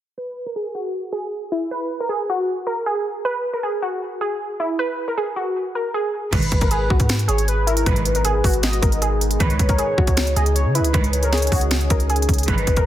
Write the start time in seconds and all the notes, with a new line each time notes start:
0.18 B4
0.46 A#4
0.56 G#4
0.75 F#4
1.12 G#4
1.52 E4
1.71 B4
2.00 A#4
2.09 G#4
2.30 F#4
2.67 A#4
2.86 G#4
3.25 B4
3.54 A#4
3.63 G#4
3.82 F#4
4.21 G#4
4.60 E4
4.79 B4
5.08 A#4
5.18 G#4
5.36 F#4
5.75 A#4
5.94 G#4
6.32 G#1 B1 G#2 D#3 G#3 B3 D#4 B4, kick, closed hi-hat, crash
6.42 closed hi-hat
6.52 G#1, kick, closed hi-hat
6.61 G#1 A#4, kick, closed hi-hat
6.71 G#4, closed hi-hat
6.90 B1 F#4, kick
7.00 G#2, kick, closed hi-hat
7.09 snare, closed hi-hat
7.19 closed hi-hat
7.28 G#1 G#4 C#5, closed hi-hat
7.38 closed hi-hat
7.48 B4, closed hi-hat
7.67 E4 A#4, closed hi-hat
7.77 closed hi-hat
7.86 G#1 B1 G#2 D#3 B4, kick, closed hi-hat
7.96 closed hi-hat
8.05 B4, closed hi-hat
8.15 A#4, closed hi-hat
8.25 G#4, closed hi-hat
8.44 G#1 F#4, kick, open hi-hat
8.54 closed hi-hat
8.63 D#5, snare, closed hi-hat
8.73 closed hi-hat
8.82 G#1 A#4, kick, closed hi-hat
8.92 closed hi-hat
9.02 G#4, closed hi-hat
9.21 closed hi-hat
9.31 closed hi-hat
9.40 C#2 G#2 C#3 D#3 C#4 G#4 B4 C#5, kick, closed hi-hat
9.50 closed hi-hat
9.59 C#2, kick, closed hi-hat
9.69 A#4, kick, closed hi-hat
9.78 G#4, closed hi-hat
9.98 C#2 F#4, kick
10.07 kick, closed hi-hat
10.17 snare, closed hi-hat
10.27 closed hi-hat
10.36 C#2 G#4 D#5, closed hi-hat
10.46 closed hi-hat
10.55 C#5, closed hi-hat
10.65 C#3
10.75 E4 B4, closed hi-hat
10.80 C#2
10.84 closed hi-hat
10.94 C#2 G#2 D#3 B4, kick, closed hi-hat
11.04 closed hi-hat
11.13 C#5, closed hi-hat
11.23 A#4, closed hi-hat
11.33 G#4, snare, closed hi-hat
11.37 closed hi-hat
11.42 closed hi-hat
11.47 closed hi-hat
11.52 C#2 F#4, kick, open hi-hat
11.61 closed hi-hat
11.71 snare, closed hi-hat
11.81 closed hi-hat
11.90 C#2 A#4, kick, closed hi-hat
12.00 closed hi-hat
12.10 G#4, closed hi-hat
12.16 closed hi-hat
12.22 closed hi-hat
12.29 C#2, kick, closed hi-hat
12.34 closed hi-hat
12.38 closed hi-hat
12.43 closed hi-hat
12.48 G#1 B1 G#2 D#3 B4, kick, closed hi-hat
12.58 closed hi-hat
12.67 G#1, kick, closed hi-hat
12.76 G#1 A#4, kick, closed hi-hat